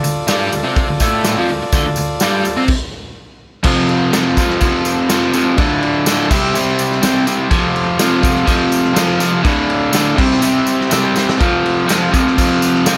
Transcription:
Already playing: transistor combo organ F4 A4 D5
0.04 overdriven electric guitar D2, open hi-hat, tambourine
0.27 overdriven electric guitar G2 G3, snare, open hi-hat, tambourine
0.52 overdriven electric guitar D2, open hi-hat, tambourine
0.64 overdriven electric guitar C3 C4
0.76 kick, open hi-hat, tambourine
0.89 overdriven electric guitar D2
1.00 overdriven electric guitar A2 A3, kick, open hi-hat, tambourine
1.24 snare, open hi-hat, tambourine
1.37 overdriven electric guitar F2 F3
1.49 overdriven electric guitar D2, open hi-hat
1.63 muted overdriven electric guitar stroke
1.72 overdriven electric guitar D2 D3, kick, open hi-hat, tambourine
1.85 overdriven electric guitar D2
1.96 overdriven electric guitar D2, open hi-hat, tambourine
2.20 overdriven electric guitar G2 G3, snare, open hi-hat, tambourine
2.44 overdriven electric guitar D2, open hi-hat, tambourine
2.57 overdriven electric guitar C3 C4
2.68 kick, crash
3.63 overdriven electric guitar F2 C3 F3, transistor combo organ F4 A4 C5, kick, crash, tambourine
3.89 crash
4.12 overdriven electric guitar F2 C3 F3, snare, tambourine, crash
4.37 overdriven electric guitar F2 C3 F3, kick, tambourine, crash
4.50 snare
4.60 overdriven electric guitar F2 C3 F3, kick, tambourine, crash
4.85 tambourine, crash
5.09 overdriven electric guitar F2 C3 F3, snare, tambourine, crash
5.33 overdriven electric guitar F2 C3 F3, tambourine, crash
5.57 overdriven electric guitar D2 A2 D3, transistor combo organ F4 A4 D5, kick, tambourine, crash
5.82 crash
6.06 overdriven electric guitar D2 A2 D3, snare, tambourine, crash
6.30 overdriven electric guitar C3 G3 C4, transistor combo organ G4 C5 E5, kick, tambourine, crash
6.44 snare
6.54 overdriven electric guitar C3 G3 C4, tambourine, crash
6.79 tambourine, crash
6.92 snare
7.02 overdriven electric guitar C3 G3 C4, transistor combo organ G5, snare, tambourine, crash
7.27 overdriven electric guitar C3 G3 C4, transistor combo organ E5, tambourine, crash
7.50 overdriven electric guitar F2 C3 F3, transistor combo organ A4 C5 F5, kick, tambourine, crash
7.76 crash
7.98 overdriven electric guitar F2 C3 F3, snare, tambourine, crash
8.22 overdriven electric guitar F2 C3 F3, kick, tambourine, crash
8.36 snare
8.45 overdriven electric guitar F2 C3 F3, kick, tambourine, crash
8.72 tambourine, crash
8.84 snare
8.93 overdriven electric guitar F2 C3 F3, snare, tambourine, crash
9.19 overdriven electric guitar F2 C3 F3, tambourine, crash
9.43 overdriven electric guitar D2 A2 D3, transistor combo organ A4, kick, tambourine, crash
9.47 transistor combo organ D5 F5
9.70 crash
9.91 overdriven electric guitar D2 A2 D3, snare, tambourine, crash
10.15 overdriven electric guitar C3 G3 C4, transistor combo organ G4 C5 E5, kick, crash
10.31 snare
10.40 overdriven electric guitar C3 G3 C4, tambourine, crash
10.67 tambourine, crash
10.81 snare
10.90 overdriven electric guitar C3 G3 C4, snare, tambourine, crash
11.14 overdriven electric guitar C3 G3 C4, snare, tambourine
11.29 snare
11.38 overdriven electric guitar F2 C3 F3, transistor combo organ A4 C5 F5, kick, tambourine, crash
11.66 crash
11.87 overdriven electric guitar F2 C3 F3, snare, tambourine, crash
12.11 overdriven electric guitar F2 C3 F3, kick, tambourine, crash
12.27 snare
12.37 overdriven electric guitar F2 C3 F3, kick, tambourine, crash
12.62 tambourine, crash
12.74 snare
12.86 overdriven electric guitar F2 C3 F3, snare, tambourine, crash

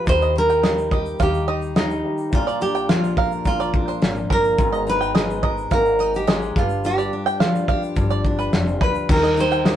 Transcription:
Already playing: steel-string acoustic guitar G2 F3 F4 G4
0.05 upright bass D#2, steel-string acoustic guitar D#3, upright piano A#3 G4, kick, shaker
0.09 nylon-string guitar C5, upright piano D#5
0.21 five-string banjo D#5, shaker
0.36 steel-string acoustic guitar D#4, nylon-string guitar A#4
0.50 five-string banjo G5, shaker
0.63 steel-string acoustic guitar G3, five-string banjo D#5, snare, shaker
0.78 shaker
0.91 steel-string acoustic guitar G4, five-string banjo D#5, kick
1.06 shaker
1.19 upright bass D#2, steel-string acoustic guitar D#3, nylon-string guitar G4, five-string banjo F5, kick, shaker
1.34 shaker
1.48 steel-string acoustic guitar D#4, five-string banjo D#5
1.62 shaker
1.76 steel-string acoustic guitar G3, nylon-string guitar D#4, five-string banjo D#5, snare, shaker
1.90 shaker
2.03 upright piano A#3 G4 D#5
2.18 shaker
2.31 upright bass A#1, steel-string acoustic guitar A#2, upright piano A#3 F4, kick, shaker
2.35 nylon-string guitar F4, upright piano D5
2.47 five-string banjo D5, shaker
2.61 steel-string acoustic guitar D4, nylon-string guitar G4, shaker
2.75 five-string banjo G5, shaker
2.89 steel-string acoustic guitar F3, nylon-string guitar F4, five-string banjo F5, snare, shaker
3.04 shaker
3.17 steel-string acoustic guitar A#4, five-string banjo F5, kick
3.32 shaker
3.45 upright bass A#1, steel-string acoustic guitar A#2, nylon-string guitar F4, kick, shaker
3.60 five-string banjo D5, shaker
3.74 steel-string acoustic guitar D4, kick
3.88 five-string banjo C5, shaker
4.02 upright bass G#1, steel-string acoustic guitar F3, snare, shaker
4.16 shaker
4.30 upright bass G1, upright piano A#3 F4 D5, five-string banjo A#4, nylon-string guitar A#4, kick, snare
4.44 shaker
4.57 upright bass G#1, steel-string acoustic guitar G#2, upright piano G#3 A#3 A#5, kick, shaker
4.66 upright piano B3
4.73 five-string banjo D#5, shaker
4.87 steel-string acoustic guitar D#4, nylon-string guitar B4, shaker
5.01 five-string banjo G5, shaker
5.15 steel-string acoustic guitar G#3, five-string banjo D#5, snare, shaker
5.30 shaker
5.43 steel-string acoustic guitar A#4, five-string banjo D#5, kick
5.58 shaker
5.71 upright bass G#1, steel-string acoustic guitar G#2, nylon-string guitar A#4, five-string banjo F5, kick, shaker
5.85 shaker
5.99 steel-string acoustic guitar D#4, five-string banjo D#5, shaker
6.14 nylon-string guitar G4, shaker
6.27 steel-string acoustic guitar G#3, five-string banjo D#5, snare, shaker
6.42 shaker
6.54 upright bass G1, steel-string acoustic guitar G2, upright piano G3 F4, kick, snare, shaker
6.58 nylon-string guitar F4, upright piano B4
6.69 shaker
6.84 steel-string acoustic guitar G2, nylon-string guitar G4, shaker
6.98 five-string banjo D5, shaker
7.13 steel-string acoustic guitar D4
7.26 five-string banjo G5, shaker
7.40 steel-string acoustic guitar F3, five-string banjo F5, snare, shaker
7.55 shaker
7.68 steel-string acoustic guitar G4, five-string banjo F5, kick
7.83 shaker
7.96 upright bass G1, steel-string acoustic guitar G2, kick, shaker
8.10 five-string banjo D5, shaker
8.25 steel-string acoustic guitar D4, kick
8.39 five-string banjo B4, shaker
8.53 upright bass F1, steel-string acoustic guitar F3, snare, shaker
8.67 shaker
8.81 upright bass D2, five-string banjo B4, nylon-string guitar B4, kick, snare
8.95 shaker
9.08 upright bass D#2, steel-string acoustic guitar D#3, tonewheel organ D#3 D#4 G4 A#4, upright piano F3 D#4 A#4, nylon-string guitar A#4, kick, crash
9.15 upright piano G3
9.23 five-string banjo D#5, shaker
9.37 steel-string acoustic guitar D#4, nylon-string guitar C5, shaker
9.51 five-string banjo G5, shaker
9.66 steel-string acoustic guitar G3, five-string banjo D#5, snare, shaker

